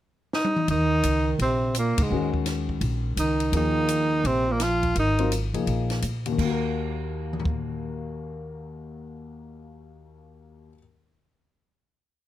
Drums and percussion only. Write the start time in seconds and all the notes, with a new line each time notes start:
0.33 snare
0.45 high tom
0.56 mid tom
0.68 ride
1.03 hi-hat pedal, ride
1.39 ride
1.75 hi-hat pedal, ride
1.98 kick, ride
2.34 kick
2.46 snare, hi-hat pedal, ride
2.69 kick
2.81 ride
3.17 hi-hat pedal, ride
3.40 ride
3.53 ride
3.88 hi-hat pedal, ride
4.25 ride
4.60 snare, hi-hat pedal, ride
4.83 kick, ride
4.96 ride
5.19 ride
5.32 hi-hat pedal, ride
5.54 ride
5.67 ride
5.90 snare, ride
6.02 hi-hat pedal, ride
6.26 ride
6.38 kick, crash
7.33 mid tom
7.40 floor tom
7.45 kick